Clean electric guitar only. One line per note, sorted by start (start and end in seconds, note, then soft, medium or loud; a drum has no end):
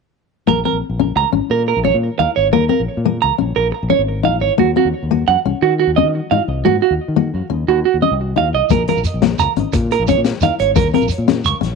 0.48 0.59 A#4 medium
0.65 0.76 A#4 medium
1.17 1.28 A#5 medium
1.51 1.62 A#4 medium
1.68 1.79 A#4 medium
1.85 1.96 C#5 medium
2.19 2.30 F5 medium
2.36 2.47 C#5 medium
2.53 2.64 A#4 medium
2.69 2.81 A#4 medium
3.22 3.33 A#5 medium
3.56 3.67 A#4 medium
3.72 muted clean electric guitar stroke medium
3.90 4.01 C#5 medium
4.25 4.36 F5 medium
4.41 4.53 C#5 medium
4.59 4.70 F#4 medium
4.77 4.88 F#4 medium
5.28 5.39 F#5 medium
5.62 5.73 F#4 medium
5.79 5.90 F#4 medium
5.96 6.07 D#5 medium
6.31 6.42 F5 medium
6.65 6.76 F#4 medium
6.82 6.93 F#4 medium
7.68 7.79 F#4 medium
7.85 7.96 F#4 medium
8.02 8.13 D#5 medium
8.38 8.48 F5 medium
8.55 8.65 D#5 medium
8.71 8.82 A#4 medium
8.89 9.00 A#4 medium
9.40 9.50 A#5 medium
9.73 muted clean electric guitar stroke medium
9.92 10.03 A#4 medium
10.09 10.20 C#5 medium
10.43 10.54 F5 medium
10.60 10.71 C#5 medium
10.76 10.87 A#4 medium
10.94 11.05 A#4 medium
11.46 11.57 C#6 medium